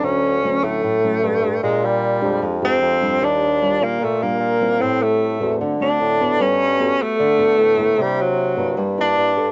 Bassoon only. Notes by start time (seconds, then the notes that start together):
0.03 D2
0.63 A2
0.83 A2
1.23 G2
1.63 A#2
2.23 F2
2.42 F2
2.81 F2
3.21 D#2
3.81 A#2
4.00 A#2
4.40 A#2
4.80 A2
5.41 E2
5.60 D3
6.01 A2
6.40 G2
7.19 D3
7.58 A2
7.98 C3
8.57 G2
8.78 G2
9.18 G2